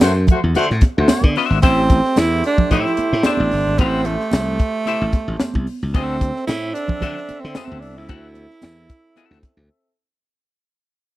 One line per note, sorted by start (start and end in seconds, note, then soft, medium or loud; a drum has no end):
0.00 0.25 F#2 loud
0.00 0.12 A3 loud
0.00 0.12 F#4 medium
0.00 0.12 C5 loud
0.00 snare loud
0.00 closed hi-hat medium
0.00 tambourine loud
0.00 high conga medium
0.27 0.39 A3 medium
0.27 0.39 F#4 medium
0.27 0.39 C5 medium
0.27 kick loud
0.27 closed hi-hat medium
0.27 low conga medium
0.44 0.55 E2 medium
0.55 0.69 D3 loud
0.55 0.65 A3 loud
0.55 0.65 F#4 loud
0.55 0.65 C5 loud
0.55 closed hi-hat medium
0.55 muted conga soft
0.70 0.82 A2 medium
0.70 snare soft
0.81 kick medium
0.81 snare soft
0.81 closed hi-hat medium
0.81 muted conga medium
0.97 1.09 D2 loud
0.97 1.35 A3 loud
0.97 1.35 F#4 medium
0.97 1.35 C5 medium
1.08 snare loud
1.08 closed hi-hat medium
1.08 tambourine medium
1.08 high conga medium
1.22 1.35 D3 loud
1.22 kick loud
1.22 high conga medium
1.36 1.57 D4 medium
1.36 1.58 F#4 medium
1.36 1.58 C5 medium
1.36 1.58 E5 medium
1.36 open hi-hat medium
1.50 1.62 G#1 medium
1.63 2.00 A1 loud
1.63 5.64 A3 medium
1.63 2.20 C4 loud
1.63 1.80 E4 medium
1.63 1.81 G4 medium
1.63 5.64 G4 medium
1.63 1.81 C5 medium
1.63 5.64 C5 medium
1.63 1.81 E5 medium
1.63 kick loud
1.63 closed hi-hat loud
1.63 muted conga medium
1.90 kick medium
1.90 closed hi-hat medium
1.90 muted conga medium
2.05 snare soft
2.16 2.41 E2 medium
2.16 2.45 E4 loud
2.16 snare loud
2.16 closed hi-hat medium
2.16 tambourine loud
2.16 high conga medium
2.44 2.71 D4 loud
2.44 snare soft
2.44 closed hi-hat medium
2.58 kick medium
2.58 low conga medium
2.71 2.84 A2 loud
2.71 2.92 E4 medium
2.71 3.26 E4 loud
2.71 2.92 G4 loud
2.71 2.92 C5 medium
2.71 2.93 E5 loud
2.71 kick medium
2.71 closed hi-hat medium
2.71 muted conga soft
2.71 low conga medium
2.86 snare soft
2.97 muted slap bass stroke medium
2.97 closed hi-hat medium
2.97 muted conga medium
3.13 3.24 A2 loud
3.13 snare soft
3.23 3.80 D4 loud
3.23 3.42 E4 medium
3.23 3.42 G4 medium
3.23 3.43 C5 medium
3.23 3.43 E5 medium
3.23 snare loud
3.23 closed hi-hat medium
3.23 tambourine medium
3.23 high conga medium
3.37 3.51 A1 medium
3.37 high conga medium
3.51 3.65 G1 medium
3.51 open hi-hat medium
3.67 3.78 G#1 medium
3.78 4.15 A1 loud
3.78 4.07 C4 loud
3.78 4.00 E4 medium
3.78 4.00 G4 medium
3.78 4.01 C5 medium
3.78 4.01 F#5 medium
3.78 kick loud
3.78 closed hi-hat medium
3.78 muted conga medium
4.05 5.67 A3 loud
4.05 closed hi-hat medium
4.05 muted conga medium
4.20 snare soft
4.31 4.57 C2 medium
4.31 snare loud
4.31 closed hi-hat medium
4.31 tambourine medium
4.31 high conga medium
4.59 kick medium
4.59 closed hi-hat medium
4.86 5.04 E4 loud
4.86 5.04 G4 medium
4.86 5.04 C5 loud
4.86 5.04 E5 loud
4.86 closed hi-hat medium
4.86 muted conga soft
5.02 5.12 A1 medium
5.13 kick medium
5.13 snare soft
5.13 closed hi-hat medium
5.13 muted conga medium
5.28 5.39 A1 loud
5.40 snare loud
5.40 closed hi-hat medium
5.40 tambourine medium
5.40 high conga medium
5.54 5.66 C2 medium
5.54 kick medium
5.54 high conga medium
5.67 open hi-hat medium
5.83 5.94 C#2 medium
5.94 6.30 D2 loud
5.94 6.15 C4 medium
5.94 6.45 C4 loud
5.94 9.94 C4 medium
5.94 6.15 F#4 medium
5.94 6.16 A4 loud
5.94 9.94 A4 medium
5.94 9.93 E5 medium
5.94 6.16 E5 loud
5.94 kick loud
5.94 closed hi-hat medium
5.94 muted conga medium
6.21 kick medium
6.21 closed hi-hat medium
6.21 muted conga medium
6.36 snare soft
6.47 6.72 A2 medium
6.47 6.75 E4 loud
6.47 snare loud
6.47 closed hi-hat medium
6.47 tambourine medium
6.47 high conga medium
6.74 7.42 D4 loud
6.74 snare soft
6.74 closed hi-hat medium
6.88 kick medium
6.88 low conga medium
7.01 7.14 D3 loud
7.01 7.19 C4 medium
7.01 7.19 F#4 loud
7.01 7.19 A4 loud
7.01 7.19 E5 loud
7.01 kick medium
7.01 closed hi-hat medium
7.01 low conga medium
7.17 snare soft
7.29 muted slap bass stroke medium
7.29 closed hi-hat medium
7.29 muted conga medium
7.40 7.82 C4 medium
7.40 snare soft
7.44 7.55 D3 loud
7.55 7.76 C4 medium
7.55 7.77 F#4 medium
7.55 7.77 A4 medium
7.55 7.77 E5 medium
7.55 snare loud
7.55 closed hi-hat medium
7.55 tambourine medium
7.55 high conga medium
7.68 7.83 D2 medium
7.68 high conga medium
7.80 7.98 C2 loud
7.80 7.98 D4 medium
7.80 open hi-hat medium
7.97 8.08 C#2 medium
7.97 9.70 E4 loud
8.09 8.45 D2 loud
8.09 8.26 C4 medium
8.09 8.26 F#4 medium
8.09 8.26 A4 medium
8.09 8.26 F#5 medium
8.09 kick loud
8.09 closed hi-hat medium
8.09 muted conga medium
8.35 closed hi-hat medium
8.35 muted conga medium
8.50 snare soft
8.62 8.87 E2 loud
8.62 snare loud
8.62 closed hi-hat medium
8.62 tambourine medium
8.62 high conga medium
8.89 kick loud
8.89 snare soft
8.89 closed hi-hat medium
9.16 9.37 C4 medium
9.16 9.37 F#4 medium
9.16 9.38 A4 medium
9.16 9.38 E5 medium
9.16 closed hi-hat medium
9.16 muted conga soft
9.31 9.42 D2 medium
9.31 snare soft
9.43 kick medium
9.43 snare soft
9.43 closed hi-hat medium
9.43 muted conga medium
9.57 9.68 D2 medium